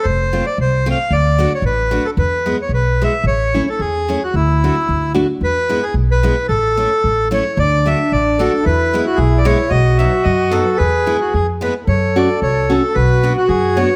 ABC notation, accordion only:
X:1
M:2/4
L:1/16
Q:"Swing" 1/4=112
K:Emix
V:1 name="Accordion"
=c3 d c2 =f2 | d3 c B3 A | B3 c B2 e2 | c3 A G3 F |
E6 z2 | B3 G2 B3 | A6 c2 | d2 e2 d2 A2 |
B3 F G3/2 d/2 c2 | ^d2 e2 d2 A2 | B3 F G2 B2 | c2 d2 c2 A2 |
B3 F G2 c2 |]